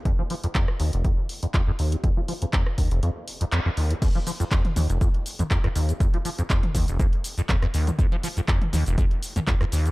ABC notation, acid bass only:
X:1
M:4/4
L:1/16
Q:"Swing 16ths" 1/4=121
K:Ebdor
V:1 name="Acid bass" clef=bass
F,, F, F, F,, F,, z E,, F,,, F,, z2 F,, F,, F,, E,, F,, | F,, F, F, F,, F,, z E,, F,,, F,, z2 F,, F,, F,, E,, F,, | F,, F, F, F,, F,, z E,, F,,, F,, z2 F,, F,, F,, E,, F,, | F,, F, F, F,, F,, z E,, F,,, F,, z2 F,, F,, F,, E,, F,, |
F,, F, F, F,, F,, z E,, F,,, F,, z2 F,, F,, F,, E,, F,, |]